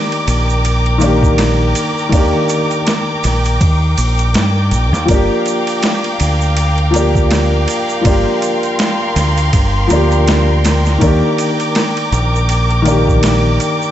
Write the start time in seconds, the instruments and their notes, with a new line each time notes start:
Already playing: upright piano D#3 A#3 D4 G4, violin section A#4 G5 D6
0.12 ride
0.28 fingered electric bass A#1, ride, shaker
0.49 shaker
0.65 ride, shaker
0.86 ride
0.98 upright piano D#3 A#3, ride, shaker
1.03 upright piano D4 G4
1.23 kick, shaker
1.38 snare, ride, shaker
1.75 ride, shaker
1.98 shaker
2.09 fingered electric bass D#2, upright piano D#3 A#3, kick, ride
2.14 upright piano D4 G4, shaker
2.49 ride, shaker
2.71 ride, shaker
2.87 snare, ride, shaker
3.24 fingered electric bass A#1, snare, ride, shaker
3.45 ride, shaker
3.61 fingered electric bass D#2, kick, ride, shaker
3.98 fingered electric bass A#1, ride, shaker
4.18 ride, shaker
4.34 fingered electric bass G2, snare, ride, shaker
4.71 fingered electric bass A#1, ride, shaker
4.93 fingered electric bass D#2, snare, shaker
5.06 fingered electric bass G1, upright piano F3 A#3, violin section A#4 F5, kick, ride
5.10 upright piano D4 G4, shaker
5.46 ride, shaker
5.67 ride, shaker
5.82 snare, ride, shaker
6.04 ride
6.20 fingered electric bass D2, ride, shaker
6.41 shaker
6.57 ride, shaker
6.78 ride
6.91 upright piano F3 A#3, ride
6.96 upright piano D4 G4, shaker
7.15 kick, shaker
7.31 snare, ride, shaker
7.68 ride, shaker
7.89 shaker
8.01 upright piano F3 A#3, violin section C6, kick, ride
8.05 fingered electric bass G1, upright piano D4 G4, shaker
8.42 ride, shaker
8.63 ride, shaker
8.79 snare, ride, shaker
9.16 fingered electric bass D2, snare, ride, shaker
9.38 ride, shaker
9.53 fingered electric bass G1, kick, ride, shaker
9.87 fingered electric bass D2, upright piano F3 A#3, ride, shaker
9.93 upright piano D4 G4
10.11 ride, shaker
10.27 snare, ride, shaker
10.65 snare, ride, shaker
10.86 snare, shaker
10.98 fingered electric bass D#2, upright piano D#3 A#3, violin section D6, kick, ride, shaker
11.04 upright piano D4 G4
11.38 ride, shaker
11.60 ride, shaker
11.75 snare, ride, shaker
11.97 ride
12.12 fingered electric bass A#1, ride, shaker
12.35 shaker
12.49 ride, shaker
12.71 ride
12.82 upright piano D#3 A#3, ride
12.87 upright piano D4 G4, shaker
13.07 kick, shaker
13.23 snare, ride, shaker
13.60 ride, shaker
13.82 shaker